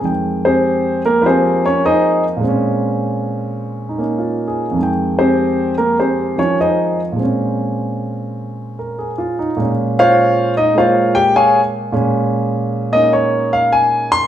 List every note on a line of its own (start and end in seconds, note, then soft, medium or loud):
0.01 2.41 F2 soft
0.01 2.41 D#3 soft
0.01 2.39 G#3 soft
0.05 2.43 G5 soft
0.45 1.01 C4 medium
0.45 1.02 G4 medium
0.45 1.02 G#4 medium
0.45 1.01 C5 medium
1.05 1.23 A#3 medium
1.05 1.24 A#4 medium
1.22 2.41 F3 soft
1.22 2.42 A#3 soft
1.22 2.43 F4 soft
1.22 1.26 B4 medium
1.26 1.65 C4 medium
1.26 1.65 G4 medium
1.26 1.65 G#4 medium
1.26 1.64 C5 medium
1.66 1.84 C#4 medium
1.66 1.84 C#5 medium
1.86 2.23 D#4 medium
1.86 2.23 G#4 medium
1.86 2.23 C5 medium
1.86 2.23 D#5 medium
2.37 4.75 A#2 medium
2.37 4.76 G#3 soft
2.44 4.78 C4 soft
2.48 3.98 C#4 medium
3.89 4.00 D#4 soft
3.98 4.77 A#3 soft
3.98 4.78 C#4 soft
3.98 4.78 D#4 soft
4.19 4.64 F4 soft
4.47 4.89 G#4 medium
4.71 7.15 F2 medium
4.71 6.35 D#3 soft
4.79 7.15 G#3 soft
4.79 7.21 G5 medium
5.19 5.74 C4 medium
5.19 5.74 G4 medium
5.19 5.74 G#4 medium
5.19 5.74 C5 medium
5.78 5.97 A#3 medium
5.78 5.96 A#4 medium
6.00 6.38 C4 medium
6.00 6.38 G4 medium
6.00 6.38 G#4 soft
6.00 6.38 C5 medium
6.36 7.18 D#3 soft
6.36 7.19 F3 soft
6.36 6.58 C#4 medium
6.36 7.19 F4 soft
6.36 6.58 C#5 medium
6.61 6.99 D#4 medium
6.61 6.99 G#4 soft
6.61 6.99 C5 soft
6.61 6.99 D#5 medium
7.12 9.55 A#2 soft
7.12 9.56 G#3 soft
7.20 9.59 C4 soft
7.20 9.60 C#4 soft
8.79 9.10 A#4 soft
8.99 9.36 G#4 soft
9.18 9.49 F4 medium
9.39 9.70 D#4 medium
9.57 11.91 A#2 soft
9.57 10.73 G#3 soft
9.61 11.92 C#4 soft
9.99 10.53 F4 medium
9.99 10.53 C5 medium
9.99 10.53 C#5 medium
9.99 10.53 F5 loud
10.57 10.76 D#4 medium
10.57 10.75 D#5 medium
10.75 11.92 G#3 soft
10.75 11.93 A#3 soft
10.75 11.15 F4 medium
10.75 11.15 C5 medium
10.75 11.15 C#5 medium
10.75 11.15 F5 medium
11.15 11.34 G4 medium
11.15 11.33 G5 loud
11.36 11.59 G#4 medium
11.36 11.60 C#5 medium
11.36 11.59 F5 medium
11.36 11.59 G#5 medium
11.92 14.27 A#2 medium
11.92 14.27 G#3 medium
11.92 12.92 C#4 medium
12.92 14.27 A#3 soft
12.92 14.27 C#4 soft
12.92 14.27 D#4 soft
12.92 13.12 D#5 medium
13.13 13.52 C#5 medium
13.53 13.72 F5 medium
13.73 14.12 G#5 medium
14.12 14.27 C6 loud